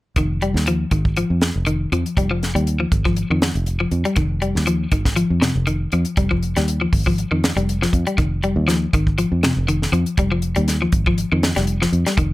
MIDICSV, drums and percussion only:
0, 0, Header, 1, 2, 480
1, 0, Start_track
1, 0, Key_signature, -4, "minor"
1, 0, Tempo, 500417
1, 159, Time_signature, 4, 2, 24, 8
1, 11831, End_track
2, 0, Start_track
2, 0, Title_t, "Drums"
2, 154, Note_on_c, 9, 42, 64
2, 157, Note_on_c, 9, 36, 80
2, 250, Note_off_c, 9, 42, 0
2, 253, Note_off_c, 9, 36, 0
2, 399, Note_on_c, 9, 42, 46
2, 495, Note_off_c, 9, 42, 0
2, 538, Note_on_c, 9, 38, 24
2, 634, Note_off_c, 9, 38, 0
2, 638, Note_on_c, 9, 42, 63
2, 734, Note_off_c, 9, 42, 0
2, 875, Note_on_c, 9, 42, 53
2, 877, Note_on_c, 9, 36, 66
2, 971, Note_off_c, 9, 42, 0
2, 973, Note_off_c, 9, 36, 0
2, 1008, Note_on_c, 9, 36, 69
2, 1104, Note_off_c, 9, 36, 0
2, 1117, Note_on_c, 9, 42, 64
2, 1213, Note_off_c, 9, 42, 0
2, 1356, Note_on_c, 9, 42, 47
2, 1359, Note_on_c, 9, 38, 60
2, 1452, Note_off_c, 9, 42, 0
2, 1455, Note_off_c, 9, 38, 0
2, 1596, Note_on_c, 9, 42, 63
2, 1692, Note_off_c, 9, 42, 0
2, 1844, Note_on_c, 9, 42, 47
2, 1940, Note_off_c, 9, 42, 0
2, 1976, Note_on_c, 9, 42, 49
2, 2072, Note_off_c, 9, 42, 0
2, 2082, Note_on_c, 9, 36, 85
2, 2088, Note_on_c, 9, 42, 63
2, 2178, Note_off_c, 9, 36, 0
2, 2184, Note_off_c, 9, 42, 0
2, 2329, Note_on_c, 9, 42, 47
2, 2332, Note_on_c, 9, 38, 25
2, 2425, Note_off_c, 9, 42, 0
2, 2427, Note_off_c, 9, 38, 0
2, 2457, Note_on_c, 9, 42, 49
2, 2553, Note_off_c, 9, 42, 0
2, 2561, Note_on_c, 9, 42, 60
2, 2657, Note_off_c, 9, 42, 0
2, 2799, Note_on_c, 9, 36, 67
2, 2800, Note_on_c, 9, 42, 50
2, 2895, Note_off_c, 9, 36, 0
2, 2896, Note_off_c, 9, 42, 0
2, 2928, Note_on_c, 9, 36, 65
2, 3024, Note_off_c, 9, 36, 0
2, 3036, Note_on_c, 9, 42, 58
2, 3132, Note_off_c, 9, 42, 0
2, 3279, Note_on_c, 9, 42, 46
2, 3282, Note_on_c, 9, 38, 65
2, 3375, Note_off_c, 9, 42, 0
2, 3378, Note_off_c, 9, 38, 0
2, 3409, Note_on_c, 9, 42, 44
2, 3505, Note_off_c, 9, 42, 0
2, 3515, Note_on_c, 9, 42, 60
2, 3610, Note_off_c, 9, 42, 0
2, 3754, Note_on_c, 9, 42, 42
2, 3850, Note_off_c, 9, 42, 0
2, 3886, Note_on_c, 9, 42, 43
2, 3982, Note_off_c, 9, 42, 0
2, 3990, Note_on_c, 9, 42, 65
2, 3996, Note_on_c, 9, 36, 90
2, 4086, Note_off_c, 9, 42, 0
2, 4092, Note_off_c, 9, 36, 0
2, 4237, Note_on_c, 9, 42, 45
2, 4333, Note_off_c, 9, 42, 0
2, 4376, Note_on_c, 9, 38, 26
2, 4472, Note_off_c, 9, 38, 0
2, 4475, Note_on_c, 9, 42, 64
2, 4571, Note_off_c, 9, 42, 0
2, 4715, Note_on_c, 9, 42, 52
2, 4718, Note_on_c, 9, 36, 71
2, 4811, Note_off_c, 9, 42, 0
2, 4813, Note_off_c, 9, 36, 0
2, 4847, Note_on_c, 9, 38, 28
2, 4849, Note_on_c, 9, 36, 72
2, 4942, Note_off_c, 9, 38, 0
2, 4945, Note_off_c, 9, 36, 0
2, 4955, Note_on_c, 9, 42, 65
2, 5051, Note_off_c, 9, 42, 0
2, 5198, Note_on_c, 9, 42, 47
2, 5201, Note_on_c, 9, 38, 65
2, 5294, Note_off_c, 9, 42, 0
2, 5297, Note_off_c, 9, 38, 0
2, 5436, Note_on_c, 9, 42, 63
2, 5532, Note_off_c, 9, 42, 0
2, 5676, Note_on_c, 9, 42, 45
2, 5772, Note_off_c, 9, 42, 0
2, 5802, Note_on_c, 9, 42, 52
2, 5897, Note_off_c, 9, 42, 0
2, 5917, Note_on_c, 9, 42, 67
2, 5921, Note_on_c, 9, 36, 85
2, 6013, Note_off_c, 9, 42, 0
2, 6016, Note_off_c, 9, 36, 0
2, 6052, Note_on_c, 9, 36, 59
2, 6148, Note_off_c, 9, 36, 0
2, 6164, Note_on_c, 9, 42, 50
2, 6260, Note_off_c, 9, 42, 0
2, 6294, Note_on_c, 9, 42, 52
2, 6297, Note_on_c, 9, 38, 26
2, 6390, Note_off_c, 9, 42, 0
2, 6393, Note_off_c, 9, 38, 0
2, 6407, Note_on_c, 9, 42, 68
2, 6503, Note_off_c, 9, 42, 0
2, 6644, Note_on_c, 9, 36, 70
2, 6646, Note_on_c, 9, 46, 65
2, 6740, Note_off_c, 9, 36, 0
2, 6742, Note_off_c, 9, 46, 0
2, 6774, Note_on_c, 9, 36, 65
2, 6870, Note_off_c, 9, 36, 0
2, 6889, Note_on_c, 9, 42, 62
2, 6985, Note_off_c, 9, 42, 0
2, 7134, Note_on_c, 9, 42, 45
2, 7137, Note_on_c, 9, 38, 66
2, 7230, Note_off_c, 9, 42, 0
2, 7233, Note_off_c, 9, 38, 0
2, 7263, Note_on_c, 9, 42, 49
2, 7359, Note_off_c, 9, 42, 0
2, 7377, Note_on_c, 9, 42, 59
2, 7472, Note_off_c, 9, 42, 0
2, 7504, Note_on_c, 9, 38, 25
2, 7600, Note_off_c, 9, 38, 0
2, 7607, Note_on_c, 9, 36, 55
2, 7609, Note_on_c, 9, 42, 42
2, 7703, Note_off_c, 9, 36, 0
2, 7705, Note_off_c, 9, 42, 0
2, 7737, Note_on_c, 9, 42, 46
2, 7833, Note_off_c, 9, 42, 0
2, 7847, Note_on_c, 9, 36, 93
2, 7848, Note_on_c, 9, 42, 60
2, 7943, Note_off_c, 9, 36, 0
2, 7944, Note_off_c, 9, 42, 0
2, 8087, Note_on_c, 9, 42, 43
2, 8183, Note_off_c, 9, 42, 0
2, 8331, Note_on_c, 9, 42, 66
2, 8334, Note_on_c, 9, 38, 30
2, 8427, Note_off_c, 9, 42, 0
2, 8430, Note_off_c, 9, 38, 0
2, 8569, Note_on_c, 9, 36, 74
2, 8571, Note_on_c, 9, 42, 53
2, 8665, Note_off_c, 9, 36, 0
2, 8667, Note_off_c, 9, 42, 0
2, 8698, Note_on_c, 9, 36, 64
2, 8794, Note_off_c, 9, 36, 0
2, 8808, Note_on_c, 9, 42, 64
2, 8904, Note_off_c, 9, 42, 0
2, 9046, Note_on_c, 9, 42, 50
2, 9049, Note_on_c, 9, 38, 63
2, 9142, Note_off_c, 9, 42, 0
2, 9145, Note_off_c, 9, 38, 0
2, 9288, Note_on_c, 9, 42, 63
2, 9384, Note_off_c, 9, 42, 0
2, 9422, Note_on_c, 9, 38, 25
2, 9518, Note_off_c, 9, 38, 0
2, 9525, Note_on_c, 9, 42, 44
2, 9621, Note_off_c, 9, 42, 0
2, 9652, Note_on_c, 9, 42, 46
2, 9748, Note_off_c, 9, 42, 0
2, 9760, Note_on_c, 9, 42, 72
2, 9762, Note_on_c, 9, 36, 88
2, 9856, Note_off_c, 9, 42, 0
2, 9858, Note_off_c, 9, 36, 0
2, 9996, Note_on_c, 9, 42, 52
2, 10091, Note_off_c, 9, 42, 0
2, 10126, Note_on_c, 9, 42, 54
2, 10222, Note_off_c, 9, 42, 0
2, 10242, Note_on_c, 9, 42, 76
2, 10245, Note_on_c, 9, 38, 26
2, 10338, Note_off_c, 9, 42, 0
2, 10341, Note_off_c, 9, 38, 0
2, 10476, Note_on_c, 9, 42, 53
2, 10480, Note_on_c, 9, 36, 69
2, 10572, Note_off_c, 9, 42, 0
2, 10576, Note_off_c, 9, 36, 0
2, 10611, Note_on_c, 9, 36, 74
2, 10707, Note_off_c, 9, 36, 0
2, 10722, Note_on_c, 9, 42, 63
2, 10817, Note_off_c, 9, 42, 0
2, 10964, Note_on_c, 9, 42, 50
2, 10967, Note_on_c, 9, 38, 63
2, 11060, Note_off_c, 9, 42, 0
2, 11063, Note_off_c, 9, 38, 0
2, 11092, Note_on_c, 9, 42, 48
2, 11094, Note_on_c, 9, 38, 25
2, 11188, Note_off_c, 9, 42, 0
2, 11190, Note_off_c, 9, 38, 0
2, 11195, Note_on_c, 9, 42, 62
2, 11291, Note_off_c, 9, 42, 0
2, 11335, Note_on_c, 9, 38, 25
2, 11431, Note_off_c, 9, 38, 0
2, 11443, Note_on_c, 9, 42, 47
2, 11539, Note_off_c, 9, 42, 0
2, 11570, Note_on_c, 9, 42, 47
2, 11573, Note_on_c, 9, 38, 25
2, 11666, Note_off_c, 9, 42, 0
2, 11669, Note_off_c, 9, 38, 0
2, 11679, Note_on_c, 9, 36, 81
2, 11683, Note_on_c, 9, 42, 60
2, 11775, Note_off_c, 9, 36, 0
2, 11778, Note_off_c, 9, 42, 0
2, 11831, End_track
0, 0, End_of_file